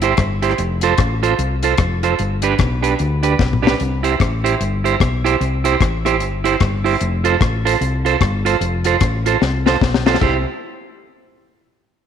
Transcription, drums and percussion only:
0.02 closed hi-hat medium
0.17 kick loud
0.17 cross-stick loud
0.17 closed hi-hat medium
0.43 closed hi-hat medium
0.50 cross-stick medium
0.58 closed hi-hat medium
0.81 closed hi-hat medium
0.98 kick loud
0.98 cross-stick loud
0.98 closed hi-hat medium
1.23 closed hi-hat medium
1.39 closed hi-hat medium
1.63 closed hi-hat medium
1.78 kick loud
1.78 cross-stick loud
1.78 closed hi-hat medium
2.03 closed hi-hat medium
2.19 closed hi-hat medium
2.42 closed hi-hat loud
2.59 kick loud
2.59 cross-stick loud
2.59 closed hi-hat medium
2.84 closed hi-hat loud
2.99 closed hi-hat medium
3.23 closed hi-hat medium
3.39 kick loud
3.39 snare medium
3.53 mid tom medium
3.67 snare loud
3.80 closed hi-hat medium
4.04 closed hi-hat medium
4.20 kick loud
4.20 cross-stick loud
4.20 closed hi-hat medium
4.46 closed hi-hat loud
4.61 closed hi-hat medium
4.86 closed hi-hat medium
5.00 kick loud
5.00 cross-stick loud
5.00 closed hi-hat medium
5.26 closed hi-hat medium
5.41 closed hi-hat medium
5.65 closed hi-hat loud
5.81 kick loud
5.81 cross-stick loud
5.81 closed hi-hat medium
6.06 cross-stick medium
6.06 closed hi-hat medium
6.20 closed hi-hat medium
6.45 closed hi-hat medium
6.60 kick loud
6.60 cross-stick loud
6.60 closed hi-hat medium
6.86 open hi-hat soft
7.01 closed hi-hat medium
7.25 closed hi-hat loud
7.41 kick loud
7.41 cross-stick loud
7.41 closed hi-hat medium
7.67 closed hi-hat loud
7.81 closed hi-hat medium
8.06 closed hi-hat medium
8.21 kick loud
8.21 cross-stick loud
8.21 closed hi-hat medium
8.46 closed hi-hat medium
8.61 closed hi-hat medium
8.84 closed hi-hat medium
9.00 kick loud
9.00 cross-stick loud
9.00 closed hi-hat medium
9.26 closed hi-hat medium
9.42 snare medium
9.66 snare medium
9.81 kick loud
9.81 snare medium
9.94 snare medium
10.06 snare loud
10.14 snare medium
10.21 kick loud
10.21 crash medium

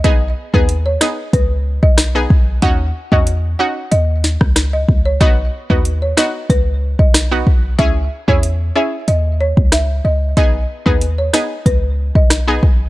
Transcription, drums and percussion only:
0.04 kick loud
0.04 closed hi-hat medium
0.54 kick loud
0.69 closed hi-hat medium
1.01 cross-stick medium
1.01 snare loud
1.33 kick medium
1.33 closed hi-hat medium
1.83 kick loud
1.98 cross-stick loud
1.98 snare loud
1.98 closed hi-hat medium
2.30 kick loud
2.62 kick loud
2.62 closed hi-hat medium
3.12 kick medium
3.27 closed hi-hat medium
3.92 closed hi-hat medium
4.24 snare medium
4.41 kick loud
4.41 cross-stick medium
4.56 cross-stick loud
4.56 snare loud
4.56 closed hi-hat medium
4.89 kick loud
5.21 kick loud
5.21 closed hi-hat medium
5.70 kick loud
5.85 closed hi-hat medium
6.17 cross-stick medium
6.17 snare loud
6.50 kick medium
6.50 closed hi-hat medium
6.99 kick loud
7.14 cross-stick loud
7.14 snare loud
7.14 closed hi-hat medium
7.47 kick loud
7.79 kick loud
7.79 closed hi-hat medium
8.28 kick medium
8.43 closed hi-hat medium
9.08 closed hi-hat medium
9.57 kick loud
9.72 cross-stick loud
9.72 snare loud
9.72 closed hi-hat medium
10.37 kick loud
10.37 closed hi-hat medium
10.86 kick medium
11.01 closed hi-hat medium
11.33 cross-stick medium
11.33 snare loud
11.66 kick medium
11.66 closed hi-hat medium
12.15 kick loud
12.30 cross-stick loud
12.30 snare loud
12.30 closed hi-hat medium
12.63 kick loud

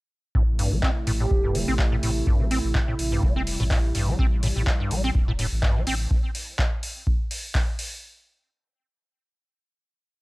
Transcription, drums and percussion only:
0.35 kick loud
0.59 open hi-hat loud
0.83 kick loud
0.83 clap loud
1.07 open hi-hat loud
1.31 kick loud
1.55 open hi-hat loud
1.79 kick loud
1.79 clap loud
2.03 open hi-hat loud
2.27 kick loud
2.51 open hi-hat loud
2.75 kick loud
2.75 clap loud
2.99 open hi-hat loud
3.23 kick loud
3.47 open hi-hat loud
3.71 kick loud
3.71 clap loud
3.71 open hi-hat medium
3.95 open hi-hat loud
4.19 kick loud
4.43 open hi-hat loud
4.67 kick loud
4.67 clap loud
4.91 open hi-hat loud
5.15 kick loud
5.39 open hi-hat loud
5.63 kick loud
5.63 clap loud
5.87 open hi-hat loud
6.11 kick loud
6.35 open hi-hat loud
6.59 kick loud
6.59 clap loud
6.83 open hi-hat loud
7.07 kick loud
7.31 open hi-hat loud
7.55 kick loud
7.55 clap loud
7.55 open hi-hat medium
7.79 open hi-hat loud

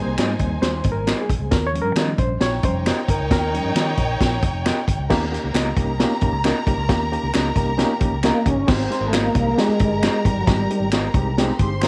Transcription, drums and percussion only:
0.18 finger snap loud
0.18 snare loud
0.18 closed hi-hat loud
0.39 kick medium
0.39 closed hi-hat medium
0.62 snare loud
0.62 closed hi-hat medium
0.73 snare soft
0.84 kick loud
0.84 closed hi-hat medium
1.07 finger snap loud
1.07 snare loud
1.07 closed hi-hat medium
1.29 kick loud
1.29 closed hi-hat medium
1.51 kick loud
1.51 snare loud
1.51 closed hi-hat loud
1.75 closed hi-hat medium
1.96 finger snap loud
1.96 snare loud
1.96 closed hi-hat medium
2.18 kick medium
2.18 closed hi-hat medium
2.41 snare loud
2.41 closed hi-hat medium
2.53 snare soft
2.63 kick loud
2.63 closed hi-hat medium
2.86 finger snap loud
2.86 snare loud
2.86 closed hi-hat medium
3.08 kick medium
3.08 closed hi-hat medium
3.31 kick loud
3.31 snare loud
3.31 closed hi-hat loud
3.54 closed hi-hat medium
3.75 finger snap loud
3.75 snare loud
3.75 closed hi-hat loud
3.97 kick medium
3.97 closed hi-hat medium
4.21 kick loud
4.21 snare loud
4.21 closed hi-hat medium
4.32 snare soft
4.42 kick loud
4.42 closed hi-hat medium
4.66 finger snap loud
4.66 snare loud
4.66 closed hi-hat medium
4.88 kick medium
4.88 closed hi-hat medium
5.10 kick loud
5.10 snare loud
5.10 crash loud
5.34 closed hi-hat medium
5.54 finger snap loud
5.54 snare loud
5.54 closed hi-hat loud
5.77 kick medium
5.77 closed hi-hat medium
6.00 snare loud
6.00 closed hi-hat medium
6.11 snare soft
6.21 kick loud
6.21 closed hi-hat medium
6.44 finger snap loud
6.44 snare loud
6.44 closed hi-hat medium
6.67 kick loud
6.67 closed hi-hat medium
6.89 kick loud
6.89 snare loud
6.89 closed hi-hat loud
7.13 closed hi-hat medium
7.34 finger snap loud
7.34 snare loud
7.34 closed hi-hat loud
7.56 kick loud
7.56 closed hi-hat medium
7.79 snare loud
7.79 closed hi-hat medium
8.00 kick loud
8.00 closed hi-hat medium
8.23 finger snap loud
8.23 snare loud
8.23 closed hi-hat loud
8.46 kick medium
8.46 closed hi-hat medium
8.68 kick loud
8.68 snare loud
8.68 crash loud
8.92 closed hi-hat medium
9.13 finger snap loud
9.13 snare loud
9.13 closed hi-hat loud
9.35 kick loud
9.35 closed hi-hat medium
9.58 snare loud
9.58 closed hi-hat medium
9.69 snare soft
9.79 kick loud
9.79 closed hi-hat medium
10.03 finger snap loud
10.03 snare loud
10.03 closed hi-hat medium
10.25 kick medium
10.25 closed hi-hat medium
10.47 kick loud
10.47 snare loud
10.47 closed hi-hat loud
10.71 closed hi-hat medium
10.92 finger snap loud
10.92 snare loud
10.92 closed hi-hat medium
11.14 kick loud
11.14 closed hi-hat medium
11.38 snare loud
11.38 closed hi-hat loud
11.48 snare soft
11.59 kick medium
11.59 closed hi-hat medium
11.82 finger snap loud
11.82 snare loud
11.82 closed hi-hat loud

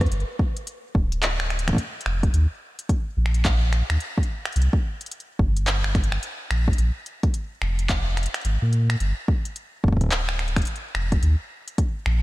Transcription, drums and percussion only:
0.01 kick loud
0.01 cross-stick medium
0.01 closed hi-hat soft
0.06 closed hi-hat soft
0.12 closed hi-hat medium
0.20 closed hi-hat soft
0.39 kick loud
0.57 closed hi-hat medium
0.67 closed hi-hat medium
0.95 kick loud
1.12 closed hi-hat medium
1.23 clap loud
1.23 closed hi-hat medium
1.40 finger snap medium
1.50 finger snap medium
1.50 closed hi-hat soft
1.59 closed hi-hat medium
1.68 finger snap medium
1.68 kick soft
1.68 kick medium
1.68 closed hi-hat medium
1.69 kick medium
1.73 kick medium
1.75 kick medium
1.76 kick medium
1.76 closed hi-hat medium
2.01 closed hi-hat soft
2.06 finger snap medium
2.23 kick loud
2.23 closed hi-hat medium
2.34 closed hi-hat medium
2.79 closed hi-hat medium
2.89 kick loud
2.89 closed hi-hat medium
3.26 finger snap medium
3.34 closed hi-hat soft
3.45 kick loud
3.45 clap loud
3.45 closed hi-hat medium
3.73 finger snap soft
3.73 closed hi-hat soft
3.90 finger snap medium
3.90 closed hi-hat medium
4.00 closed hi-hat medium
4.18 kick loud
4.23 closed hi-hat soft
4.46 finger snap medium
4.46 closed hi-hat soft
4.53 closed hi-hat soft
4.56 closed hi-hat medium
4.62 closed hi-hat soft
4.73 kick loud
5.01 closed hi-hat soft
5.06 closed hi-hat soft
5.12 closed hi-hat medium
5.20 closed hi-hat soft
5.39 kick loud
5.57 closed hi-hat soft
5.67 clap loud
5.67 closed hi-hat medium
5.84 finger snap medium
5.95 finger snap soft
5.95 kick loud
5.95 closed hi-hat soft
6.04 closed hi-hat medium
6.12 finger snap medium
6.23 closed hi-hat medium
6.51 finger snap medium
6.51 closed hi-hat soft
6.68 kick loud
6.73 closed hi-hat medium
6.78 closed hi-hat medium
7.06 closed hi-hat soft
7.23 kick loud
7.23 closed hi-hat medium
7.34 closed hi-hat medium
7.62 finger snap medium
7.79 closed hi-hat soft
7.89 kick loud
7.89 clap loud
7.89 closed hi-hat medium
8.17 finger snap soft
8.17 closed hi-hat soft
8.23 closed hi-hat soft
8.26 closed hi-hat medium
8.26 closed hi-hat soft
8.34 finger snap medium
8.34 closed hi-hat medium
8.34 closed hi-hat soft
8.41 closed hi-hat soft
8.45 closed hi-hat medium
8.73 closed hi-hat soft
8.90 finger snap medium
8.90 closed hi-hat medium
9.00 closed hi-hat medium
9.28 kick loud
9.45 closed hi-hat medium
9.56 closed hi-hat medium
9.84 kick loud
9.88 kick medium
9.92 kick medium
9.97 kick medium
10.01 kick medium
10.01 closed hi-hat soft
10.04 kick soft
10.06 kick soft
10.09 kick soft
10.09 clap loud
10.09 closed hi-hat medium
10.29 finger snap medium
10.39 finger snap soft
10.39 closed hi-hat soft
10.48 closed hi-hat soft
10.56 finger snap medium
10.56 kick loud
10.56 closed hi-hat soft
10.58 closed hi-hat soft
10.62 closed hi-hat soft
10.65 closed hi-hat soft
10.67 closed hi-hat medium
10.76 closed hi-hat soft
10.95 finger snap medium
10.95 closed hi-hat soft
11.12 kick loud
11.12 closed hi-hat medium
11.23 closed hi-hat medium
11.68 closed hi-hat soft
11.78 kick medium
11.78 closed hi-hat medium
12.06 finger snap medium

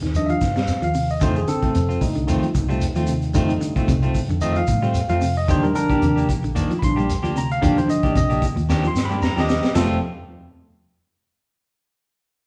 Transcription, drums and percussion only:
0.03 snare soft
0.03 closed hi-hat soft
0.03 shekere soft
0.14 closed hi-hat medium
0.14 shekere medium
0.29 closed hi-hat soft
0.29 shekere soft
0.41 kick medium
0.41 snare soft
0.41 closed hi-hat soft
0.41 shekere medium
0.56 snare medium
0.56 shekere soft
0.68 snare soft
0.68 closed hi-hat medium
0.68 shekere medium
0.82 closed hi-hat soft
0.82 shekere soft
0.94 open hi-hat medium
0.94 shekere medium
1.09 shekere soft
1.21 kick medium
1.21 closed hi-hat medium
1.21 shekere loud
1.36 shekere soft
1.48 closed hi-hat soft
1.48 shekere medium
1.63 kick medium
1.63 closed hi-hat soft
1.63 shekere soft
1.75 closed hi-hat medium
1.75 shekere medium
1.90 shekere soft
2.01 kick medium
2.01 open hi-hat medium
2.01 shekere medium
2.16 closed hi-hat soft
2.16 shekere soft
2.28 closed hi-hat medium
2.28 shekere medium
2.43 closed hi-hat soft
2.43 shekere soft
2.55 kick medium
2.55 closed hi-hat medium
2.55 shekere medium
2.70 shekere soft
2.81 closed hi-hat medium
2.81 shekere medium
2.95 closed hi-hat soft
2.95 shekere soft
3.07 closed hi-hat medium
3.07 shekere medium
3.22 closed hi-hat soft
3.22 shekere soft
3.34 kick medium
3.34 closed hi-hat medium
3.34 shekere loud
3.49 closed hi-hat soft
3.49 shekere soft
3.62 closed hi-hat medium
3.62 shekere medium
3.76 kick medium
3.76 closed hi-hat soft
3.76 shekere soft
3.88 kick medium
3.88 closed hi-hat medium
3.88 shekere medium
4.02 closed hi-hat soft
4.02 shekere soft
4.15 kick medium
4.15 open hi-hat medium
4.15 shekere medium
4.29 closed hi-hat soft
4.29 shekere soft
4.41 closed hi-hat medium
4.41 shekere medium
4.56 closed hi-hat soft
4.56 shekere soft
4.67 kick medium
4.67 closed hi-hat soft
4.67 shekere medium
4.83 shekere soft
4.94 closed hi-hat medium
4.94 shekere medium
5.09 closed hi-hat soft
5.09 shekere soft
5.22 open hi-hat medium
5.22 shekere medium
5.36 shekere soft
5.48 kick medium
5.48 closed hi-hat medium
5.48 shekere loud
5.64 shekere soft
5.75 closed hi-hat medium
5.75 shekere medium
5.90 kick medium
5.90 closed hi-hat soft
5.90 shekere soft
6.02 closed hi-hat medium
6.02 shekere medium
6.18 shekere soft
6.29 kick medium
6.29 closed hi-hat medium
6.29 shekere medium
6.44 closed hi-hat soft
6.44 shekere soft
6.56 closed hi-hat medium
6.56 shekere medium
6.71 closed hi-hat soft
6.71 shekere soft
6.82 kick medium
6.82 closed hi-hat medium
6.82 shekere medium
6.98 shekere soft
7.10 closed hi-hat medium
7.10 shekere medium
7.24 closed hi-hat soft
7.24 shekere soft
7.36 closed hi-hat medium
7.36 shekere medium
7.51 closed hi-hat soft
7.51 shekere soft
7.63 kick medium
7.63 closed hi-hat medium
7.63 shekere loud
7.78 closed hi-hat soft
7.78 shekere soft
7.90 closed hi-hat medium
7.90 shekere medium
8.03 kick medium
8.03 closed hi-hat soft
8.03 shekere soft
8.15 kick medium
8.15 closed hi-hat medium
8.15 shekere medium
8.30 closed hi-hat soft
8.30 shekere soft
8.42 kick medium
8.42 closed hi-hat medium
8.42 shekere medium
8.57 closed hi-hat soft
8.57 shekere soft
8.70 snare soft
8.70 shekere medium
8.84 shekere soft
8.96 snare medium
8.96 shekere medium
9.10 shekere soft
9.22 snare medium
9.22 shekere medium
9.37 snare medium
9.37 shekere soft
9.49 snare medium
9.49 shekere medium
9.64 snare medium
9.64 shekere soft
9.75 snare medium
9.75 floor tom medium
9.75 ride bell medium
9.75 shekere loud

